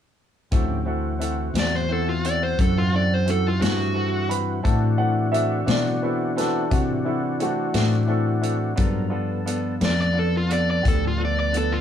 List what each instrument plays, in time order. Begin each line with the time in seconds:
0.51 fingered electric bass D2, tonewheel organ F3 C#4 G4, upright piano C4 E4 F#4 A4, kick, closed hi-hat
0.85 tonewheel organ E3 C4 F#4, upright piano C4 E4 F#4 A4
1.19 upright piano C4 E4 F#4 A4, closed hi-hat
1.54 fingered electric bass E2, upright piano C4 E4 F#4 A4, snare, closed hi-hat
1.59 lead electric guitar D5
1.75 lead electric guitar C5
1.89 upright piano C4 E4 F#4 C5, lead electric guitar A4
2.09 lead electric guitar F4
2.25 upright piano C4 E4 F#4 A4, lead electric guitar D5, closed hi-hat
2.43 lead electric guitar C5
2.59 fingered electric bass F#2, upright piano C4 E4 F#4 A4, lead electric guitar A4, kick, closed hi-hat
2.78 lead electric guitar F4
2.92 upright piano C4 E4 F#4 A4, lead electric guitar D5
3.14 lead electric guitar C5
3.25 upright piano C4 E4 F#4 A4, closed hi-hat
3.30 lead electric guitar A4
3.48 lead electric guitar F4
3.59 fingered electric bass G2, upright piano C4 E4 F#4 A4, lead electric guitar F#4, closed hi-hat
3.63 snare
3.94 upright piano C4 E4 F#4 A4
4.28 upright piano C4 E4 F#4 B4 B5, closed hi-hat
4.63 fingered electric bass A2, tonewheel organ E3 D4 F#4, upright piano C4 E4 F#4 A4 A5, kick, closed hi-hat
4.98 upright piano C4 E4 F#4 A4 F#5
5.31 upright piano C4 E4 F#4 A4 E5, closed hi-hat
5.66 fingered electric bass B2, upright piano C4 E4 F#4 A4 D5, snare, closed hi-hat
6.02 upright piano C4 E4 F#4 A4 B4
6.36 upright piano C4 E4 F#4 A4 B4, snare, closed hi-hat
6.70 fingered electric bass C3, upright piano C4 E4 F#4 A4, kick, closed hi-hat
7.04 upright piano C4 E4 F#4 A4
7.39 upright piano A3 C4 E4 F#4 A4, closed hi-hat
7.74 fingered electric bass A2, upright piano C4 E4 F#4 A4, snare, closed hi-hat
8.07 upright piano C4 E4 F#4 A4
8.42 upright piano C4 E4 F#4 A4, closed hi-hat
8.76 fingered electric bass G2, tonewheel organ F#3 A#4, upright piano B3 D4 F4 A4, kick, closed hi-hat
8.80 tonewheel organ C4
9.10 tonewheel organ F3 B3 A4, upright piano B3 D4 F4 A4
9.46 upright piano B3 D4 F4 A4, closed hi-hat
9.80 fingered electric bass F2, upright piano B3 D4 F4 A4, snare, closed hi-hat
9.85 lead electric guitar D5
10.02 lead electric guitar D5
10.13 upright piano B3 D4 F4 A4
10.19 lead electric guitar A4
10.37 lead electric guitar F4
10.49 upright piano B3 D4 F4 A4, lead electric guitar D5, closed hi-hat
10.71 lead electric guitar D5
10.82 fingered electric bass D2, upright piano B3 D4 F4 G4, kick, closed hi-hat
10.88 lead electric guitar A4
11.07 lead electric guitar F4
11.17 upright piano B3 D4 F4 A4
11.25 lead electric guitar D5
11.40 lead electric guitar D5
11.52 upright piano B3 D4 F4 A4, closed hi-hat
11.58 lead electric guitar A4
11.72 lead electric guitar F4